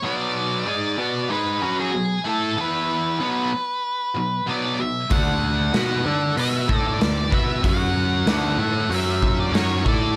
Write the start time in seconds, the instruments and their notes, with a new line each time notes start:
0.04 overdriven electric guitar B2 F#3 B3, lead electric guitar D5
0.67 overdriven electric guitar G#3 D#4 G#4
0.98 overdriven electric guitar B3 F#4 B4
1.30 overdriven electric guitar G#3 D#4 G#4, lead electric guitar B4
1.62 overdriven electric guitar F#3 C#4 F#4
1.80 lead electric guitar G#4
1.94 overdriven electric guitar B2 F#3
2.25 overdriven electric guitar A3 E4 A4, lead electric guitar A4
2.58 overdriven electric guitar E3 B3 E4, lead electric guitar B4
3.21 overdriven electric guitar B2 F#3 B3
4.17 overdriven electric guitar B2 F#3
4.48 overdriven electric guitar B2 F#3 B3, lead electric guitar D5
4.80 overdriven electric guitar B2 F#3, lead electric guitar E5
5.10 picked electric bass D2, overdriven electric guitar D3 A3 D4, lead electric guitar F#5, kick, open hi-hat
5.74 picked electric bass B2, overdriven electric guitar B3 F#4 B4, snare, open hi-hat
6.06 picked electric bass D3, overdriven electric guitar D4 A4 D5
6.37 picked electric bass B2, overdriven electric guitar B3 F#4 B4, lead electric guitar E5, open hi-hat
6.69 picked electric bass A2, overdriven electric guitar A3 E4 A4, kick
6.88 lead electric guitar D5
7.01 picked electric bass D2, overdriven electric guitar D3 A3, lead electric guitar D5, snare, open hi-hat
7.32 picked electric bass B2, overdriven electric guitar B3 F#4 B4, lead electric guitar E5, kick
7.63 picked electric bass F#2, overdriven electric guitar F#3 C#4 F#4, kick, open hi-hat
7.69 lead electric guitar F#5
8.26 picked electric bass D2, overdriven electric guitar D3 A3 D4, snare, open hi-hat
8.58 picked electric bass A2, overdriven electric guitar A3 E4 A4
8.90 picked electric bass F#2, overdriven electric guitar F#3 C#4 F#4, open hi-hat
8.94 lead electric guitar E5
9.22 kick
9.40 lead electric guitar D5
9.52 picked electric bass F#2, overdriven electric guitar F#3 C#4 F#4, snare, open hi-hat
9.56 lead electric guitar C#5
9.86 picked electric bass A2, overdriven electric guitar A3 E4 A4, lead electric guitar D5, kick